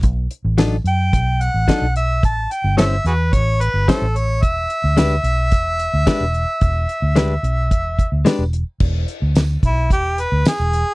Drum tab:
CC |--------|--------|--------|--------|
HH |xxxxxxxx|xxxxxxxx|xxxxxxxx|xxxxxxxx|
TB |--x---x-|--x---x-|--x---x-|--x---x-|
SD |--o---o-|--o---o-|--o---o-|--o---o-|
BD |o---o-o-|o---o-o-|o---o-o-|o---oo--|

CC |x-------|
HH |-xxxxxxx|
TB |--x---x-|
SD |--o---o-|
BD |o--oo---|